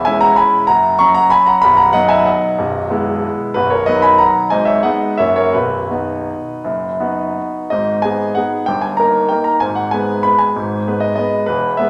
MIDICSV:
0, 0, Header, 1, 2, 480
1, 0, Start_track
1, 0, Key_signature, 5, "major"
1, 0, Tempo, 312337
1, 1065, Time_signature, 3, 2, 24, 8
1, 2988, Tempo, 322407
1, 7308, Tempo, 359066
1, 11148, Tempo, 316623
1, 11149, Key_signature, 5, "minor"
1, 15468, Tempo, 305655
1, 17556, End_track
2, 0, Start_track
2, 0, Title_t, "Grand piano"
2, 0, Program_c, 0, 0
2, 0, Control_c, 0, 64, 127
2, 0, Note_on_c, 0, 28, 56
2, 0, Note_on_c, 0, 40, 60
2, 0, Note_on_c, 0, 76, 60
2, 0, Note_on_c, 0, 80, 73
2, 75, Note_off_c, 0, 80, 0
2, 75, Note_on_c, 0, 80, 88
2, 93, Note_off_c, 0, 76, 0
2, 93, Note_on_c, 0, 76, 66
2, 102, Note_on_c, 0, 56, 47
2, 111, Note_on_c, 0, 61, 49
2, 113, Note_on_c, 0, 64, 55
2, 316, Note_on_c, 0, 82, 89
2, 323, Note_off_c, 0, 76, 0
2, 329, Note_on_c, 0, 78, 66
2, 332, Note_off_c, 0, 80, 0
2, 556, Note_on_c, 0, 83, 87
2, 564, Note_off_c, 0, 78, 0
2, 574, Note_on_c, 0, 80, 65
2, 575, Note_off_c, 0, 82, 0
2, 603, Control_c, 0, 64, 0
2, 615, Note_off_c, 0, 28, 0
2, 615, Note_off_c, 0, 40, 0
2, 1001, Note_off_c, 0, 56, 0
2, 1006, Note_off_c, 0, 61, 0
2, 1007, Note_off_c, 0, 64, 0
2, 1023, Note_off_c, 0, 80, 0
2, 1032, Note_on_c, 0, 82, 89
2, 1047, Note_on_c, 0, 78, 63
2, 1048, Note_off_c, 0, 83, 0
2, 1059, Note_on_c, 0, 42, 51
2, 1060, Note_on_c, 0, 30, 54
2, 1363, Control_c, 0, 64, 127
2, 1501, Note_off_c, 0, 78, 0
2, 1513, Note_off_c, 0, 82, 0
2, 1516, Note_on_c, 0, 85, 107
2, 1527, Note_off_c, 0, 30, 0
2, 1527, Note_off_c, 0, 42, 0
2, 1536, Note_on_c, 0, 82, 75
2, 1542, Note_on_c, 0, 54, 49
2, 1550, Note_on_c, 0, 61, 48
2, 1735, Note_off_c, 0, 82, 0
2, 1758, Note_on_c, 0, 82, 95
2, 1775, Note_on_c, 0, 78, 64
2, 1776, Note_off_c, 0, 85, 0
2, 2002, Note_on_c, 0, 83, 102
2, 2011, Note_off_c, 0, 78, 0
2, 2018, Note_on_c, 0, 80, 79
2, 2020, Note_off_c, 0, 82, 0
2, 2048, Control_c, 0, 64, 0
2, 2248, Note_on_c, 0, 82, 84
2, 2252, Note_off_c, 0, 80, 0
2, 2261, Note_off_c, 0, 83, 0
2, 2264, Note_on_c, 0, 78, 68
2, 2451, Note_off_c, 0, 54, 0
2, 2455, Note_off_c, 0, 61, 0
2, 2484, Note_on_c, 0, 83, 105
2, 2485, Note_off_c, 0, 78, 0
2, 2498, Note_off_c, 0, 82, 0
2, 2509, Note_on_c, 0, 78, 67
2, 2511, Note_on_c, 0, 23, 55
2, 2516, Note_on_c, 0, 35, 63
2, 2709, Note_off_c, 0, 78, 0
2, 2718, Note_on_c, 0, 82, 77
2, 2732, Note_on_c, 0, 78, 64
2, 2733, Note_off_c, 0, 83, 0
2, 2751, Control_c, 0, 64, 127
2, 2939, Note_off_c, 0, 78, 0
2, 2962, Note_on_c, 0, 78, 101
2, 2973, Note_off_c, 0, 23, 0
2, 2974, Note_off_c, 0, 82, 0
2, 2976, Note_off_c, 0, 35, 0
2, 2977, Note_on_c, 0, 75, 75
2, 2991, Note_on_c, 0, 54, 46
2, 2995, Note_on_c, 0, 59, 52
2, 3006, Note_on_c, 0, 63, 50
2, 3199, Note_on_c, 0, 80, 89
2, 3204, Note_off_c, 0, 75, 0
2, 3214, Note_off_c, 0, 78, 0
2, 3215, Note_on_c, 0, 76, 74
2, 3446, Note_off_c, 0, 76, 0
2, 3446, Note_on_c, 0, 78, 71
2, 3455, Note_off_c, 0, 80, 0
2, 3464, Note_on_c, 0, 75, 54
2, 3490, Control_c, 0, 64, 0
2, 3889, Note_off_c, 0, 54, 0
2, 3890, Note_off_c, 0, 59, 0
2, 3896, Note_off_c, 0, 63, 0
2, 3944, Note_on_c, 0, 23, 57
2, 3944, Note_on_c, 0, 35, 58
2, 4253, Control_c, 0, 64, 127
2, 4405, Note_off_c, 0, 23, 0
2, 4405, Note_off_c, 0, 35, 0
2, 4418, Note_on_c, 0, 56, 47
2, 4422, Note_on_c, 0, 59, 50
2, 4430, Note_on_c, 0, 64, 52
2, 4937, Control_c, 0, 64, 0
2, 5103, Note_off_c, 0, 75, 0
2, 5154, Note_off_c, 0, 78, 0
2, 5340, Note_off_c, 0, 56, 0
2, 5342, Note_off_c, 0, 59, 0
2, 5346, Note_off_c, 0, 64, 0
2, 5368, Note_on_c, 0, 71, 82
2, 5389, Note_on_c, 0, 66, 63
2, 5394, Note_on_c, 0, 35, 59
2, 5396, Note_on_c, 0, 23, 52
2, 5602, Note_on_c, 0, 73, 68
2, 5613, Note_off_c, 0, 66, 0
2, 5620, Note_off_c, 0, 71, 0
2, 5620, Note_on_c, 0, 70, 53
2, 5690, Control_c, 0, 64, 127
2, 5842, Note_on_c, 0, 75, 87
2, 5849, Note_off_c, 0, 70, 0
2, 5856, Note_off_c, 0, 35, 0
2, 5857, Note_off_c, 0, 23, 0
2, 5857, Note_off_c, 0, 73, 0
2, 5859, Note_on_c, 0, 71, 62
2, 5868, Note_on_c, 0, 54, 46
2, 5874, Note_on_c, 0, 59, 44
2, 5882, Note_on_c, 0, 63, 51
2, 6082, Note_on_c, 0, 83, 92
2, 6089, Note_off_c, 0, 71, 0
2, 6098, Note_off_c, 0, 75, 0
2, 6100, Note_on_c, 0, 80, 67
2, 6321, Note_on_c, 0, 82, 78
2, 6333, Note_off_c, 0, 80, 0
2, 6340, Note_on_c, 0, 78, 66
2, 6341, Note_off_c, 0, 83, 0
2, 6377, Control_c, 0, 64, 0
2, 6767, Note_off_c, 0, 54, 0
2, 6770, Note_off_c, 0, 59, 0
2, 6774, Note_off_c, 0, 63, 0
2, 6788, Note_off_c, 0, 78, 0
2, 6797, Note_on_c, 0, 80, 82
2, 6812, Note_off_c, 0, 82, 0
2, 6815, Note_on_c, 0, 75, 66
2, 6823, Note_on_c, 0, 32, 52
2, 6823, Note_on_c, 0, 44, 58
2, 7021, Note_on_c, 0, 76, 73
2, 7040, Note_off_c, 0, 75, 0
2, 7041, Note_on_c, 0, 73, 52
2, 7048, Note_off_c, 0, 80, 0
2, 7078, Control_c, 0, 64, 127
2, 7281, Note_off_c, 0, 73, 0
2, 7282, Note_on_c, 0, 78, 80
2, 7288, Note_off_c, 0, 76, 0
2, 7292, Note_off_c, 0, 32, 0
2, 7292, Note_off_c, 0, 44, 0
2, 7296, Note_on_c, 0, 75, 62
2, 7310, Note_on_c, 0, 56, 40
2, 7312, Note_on_c, 0, 59, 46
2, 7318, Note_on_c, 0, 63, 47
2, 7326, Control_c, 0, 64, 0
2, 7729, Note_off_c, 0, 56, 0
2, 7730, Note_off_c, 0, 59, 0
2, 7734, Note_off_c, 0, 63, 0
2, 7736, Note_off_c, 0, 75, 0
2, 7748, Note_on_c, 0, 76, 80
2, 7763, Note_off_c, 0, 78, 0
2, 7764, Note_on_c, 0, 73, 61
2, 7772, Note_on_c, 0, 42, 51
2, 7772, Note_on_c, 0, 58, 37
2, 7774, Note_on_c, 0, 30, 52
2, 7783, Note_on_c, 0, 61, 39
2, 7791, Note_on_c, 0, 66, 43
2, 7972, Note_off_c, 0, 73, 0
2, 7992, Note_on_c, 0, 73, 74
2, 7998, Note_off_c, 0, 76, 0
2, 8007, Note_on_c, 0, 70, 50
2, 8030, Control_c, 0, 64, 127
2, 8197, Note_off_c, 0, 58, 0
2, 8203, Note_off_c, 0, 61, 0
2, 8208, Note_off_c, 0, 66, 0
2, 8225, Note_on_c, 0, 71, 65
2, 8227, Note_off_c, 0, 70, 0
2, 8230, Note_off_c, 0, 42, 0
2, 8232, Note_off_c, 0, 30, 0
2, 8237, Note_off_c, 0, 73, 0
2, 8244, Note_on_c, 0, 66, 46
2, 8249, Note_on_c, 0, 23, 47
2, 8249, Note_on_c, 0, 35, 47
2, 8259, Control_c, 0, 64, 0
2, 8577, Control_c, 0, 64, 127
2, 8715, Note_off_c, 0, 23, 0
2, 8715, Note_off_c, 0, 35, 0
2, 8719, Note_off_c, 0, 66, 0
2, 8729, Note_on_c, 0, 59, 41
2, 8734, Note_on_c, 0, 63, 38
2, 8739, Note_on_c, 0, 66, 46
2, 9239, Control_c, 0, 64, 0
2, 9663, Note_off_c, 0, 59, 0
2, 9665, Note_off_c, 0, 63, 0
2, 9668, Note_off_c, 0, 66, 0
2, 9713, Note_on_c, 0, 30, 45
2, 9713, Note_on_c, 0, 42, 51
2, 10009, Control_c, 0, 64, 127
2, 10171, Note_off_c, 0, 30, 0
2, 10171, Note_off_c, 0, 42, 0
2, 10189, Note_on_c, 0, 59, 44
2, 10194, Note_on_c, 0, 63, 43
2, 10196, Note_on_c, 0, 66, 46
2, 10688, Control_c, 0, 64, 0
2, 10907, Note_off_c, 0, 71, 0
2, 11097, Note_off_c, 0, 59, 0
2, 11099, Note_off_c, 0, 63, 0
2, 11100, Note_off_c, 0, 66, 0
2, 11127, Note_on_c, 0, 75, 70
2, 11150, Note_on_c, 0, 44, 47
2, 11152, Note_on_c, 0, 32, 46
2, 11399, Control_c, 0, 64, 127
2, 11607, Note_on_c, 0, 80, 78
2, 11624, Note_off_c, 0, 44, 0
2, 11625, Note_off_c, 0, 32, 0
2, 11625, Note_off_c, 0, 75, 0
2, 11635, Note_on_c, 0, 59, 42
2, 11645, Note_on_c, 0, 63, 37
2, 11650, Note_on_c, 0, 68, 42
2, 12076, Note_off_c, 0, 59, 0
2, 12082, Note_off_c, 0, 63, 0
2, 12084, Note_off_c, 0, 68, 0
2, 12101, Note_on_c, 0, 78, 75
2, 12111, Note_off_c, 0, 80, 0
2, 12132, Note_on_c, 0, 59, 40
2, 12138, Note_on_c, 0, 63, 38
2, 12139, Note_on_c, 0, 68, 41
2, 12146, Control_c, 0, 64, 0
2, 12557, Note_off_c, 0, 59, 0
2, 12560, Note_off_c, 0, 63, 0
2, 12561, Note_off_c, 0, 68, 0
2, 12578, Note_on_c, 0, 79, 83
2, 12589, Note_off_c, 0, 78, 0
2, 12604, Note_on_c, 0, 31, 47
2, 12605, Note_on_c, 0, 43, 54
2, 12809, Note_on_c, 0, 80, 63
2, 12825, Note_off_c, 0, 79, 0
2, 12872, Control_c, 0, 64, 127
2, 13044, Note_on_c, 0, 82, 76
2, 13062, Note_off_c, 0, 80, 0
2, 13063, Note_off_c, 0, 31, 0
2, 13064, Note_off_c, 0, 43, 0
2, 13076, Note_on_c, 0, 58, 43
2, 13082, Note_on_c, 0, 63, 40
2, 13084, Note_on_c, 0, 70, 41
2, 13507, Note_off_c, 0, 58, 0
2, 13511, Note_off_c, 0, 63, 0
2, 13512, Note_off_c, 0, 70, 0
2, 13524, Note_on_c, 0, 79, 70
2, 13540, Note_off_c, 0, 82, 0
2, 13551, Note_on_c, 0, 58, 42
2, 13559, Note_on_c, 0, 63, 34
2, 13562, Note_on_c, 0, 70, 43
2, 13571, Control_c, 0, 64, 0
2, 13762, Note_on_c, 0, 82, 73
2, 13780, Note_off_c, 0, 79, 0
2, 13979, Note_off_c, 0, 58, 0
2, 13984, Note_off_c, 0, 63, 0
2, 13985, Note_off_c, 0, 70, 0
2, 14004, Note_on_c, 0, 80, 77
2, 14012, Note_off_c, 0, 82, 0
2, 14027, Note_on_c, 0, 32, 47
2, 14031, Note_on_c, 0, 44, 51
2, 14234, Note_on_c, 0, 78, 67
2, 14248, Note_off_c, 0, 80, 0
2, 14297, Control_c, 0, 64, 127
2, 14474, Note_on_c, 0, 80, 75
2, 14482, Note_off_c, 0, 32, 0
2, 14484, Note_off_c, 0, 44, 0
2, 14484, Note_off_c, 0, 78, 0
2, 14502, Note_on_c, 0, 56, 40
2, 14510, Note_on_c, 0, 59, 43
2, 14513, Note_on_c, 0, 71, 46
2, 14939, Note_off_c, 0, 56, 0
2, 14944, Note_off_c, 0, 59, 0
2, 14945, Note_off_c, 0, 71, 0
2, 14956, Note_on_c, 0, 83, 80
2, 14973, Note_off_c, 0, 80, 0
2, 14984, Note_on_c, 0, 56, 43
2, 14989, Note_on_c, 0, 59, 36
2, 14994, Note_on_c, 0, 71, 42
2, 15000, Control_c, 0, 64, 0
2, 15189, Note_on_c, 0, 80, 68
2, 15216, Note_off_c, 0, 83, 0
2, 15418, Note_off_c, 0, 56, 0
2, 15421, Note_off_c, 0, 59, 0
2, 15423, Note_off_c, 0, 71, 0
2, 15453, Note_on_c, 0, 32, 48
2, 15458, Note_on_c, 0, 44, 52
2, 15767, Control_c, 0, 64, 127
2, 15925, Note_off_c, 0, 32, 0
2, 15928, Note_off_c, 0, 44, 0
2, 15944, Note_on_c, 0, 56, 40
2, 15950, Note_on_c, 0, 59, 38
2, 15957, Note_on_c, 0, 71, 49
2, 16152, Note_on_c, 0, 75, 72
2, 16170, Note_off_c, 0, 80, 0
2, 16368, Note_off_c, 0, 75, 0
2, 16386, Note_off_c, 0, 56, 0
2, 16390, Note_off_c, 0, 59, 0
2, 16391, Note_on_c, 0, 75, 72
2, 16394, Note_off_c, 0, 71, 0
2, 16425, Note_on_c, 0, 56, 37
2, 16433, Note_on_c, 0, 59, 42
2, 16439, Note_on_c, 0, 71, 40
2, 16457, Control_c, 0, 64, 0
2, 16851, Note_off_c, 0, 71, 0
2, 16857, Note_off_c, 0, 56, 0
2, 16861, Note_off_c, 0, 59, 0
2, 16874, Note_on_c, 0, 71, 71
2, 16888, Note_off_c, 0, 75, 0
2, 16909, Note_on_c, 0, 40, 51
2, 16910, Note_on_c, 0, 28, 50
2, 17189, Control_c, 0, 64, 127
2, 17360, Note_on_c, 0, 76, 75
2, 17365, Note_off_c, 0, 71, 0
2, 17368, Note_off_c, 0, 40, 0
2, 17369, Note_off_c, 0, 28, 0
2, 17393, Note_on_c, 0, 56, 43
2, 17394, Note_on_c, 0, 59, 48
2, 17400, Note_on_c, 0, 71, 45
2, 17556, Note_off_c, 0, 56, 0
2, 17556, Note_off_c, 0, 59, 0
2, 17556, Note_off_c, 0, 71, 0
2, 17556, Note_off_c, 0, 76, 0
2, 17556, End_track
0, 0, End_of_file